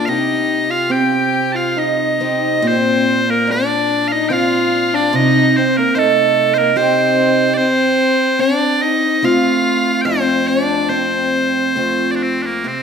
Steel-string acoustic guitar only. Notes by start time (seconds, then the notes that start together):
Already playing: A#3 D4
0.07 C3 G4
0.90 C4
1.76 D#4
2.20 C4 D#4 G4
2.62 A#2
3.47 D4
4.30 C4 D4 F4
5.13 C3
5.95 D#4
6.76 C4 D#4 G4
8.39 C4
9.22 A3 C4 F4
10.05 F2
10.89 C4
11.76 A3 C4 F4
12.64 C3 G4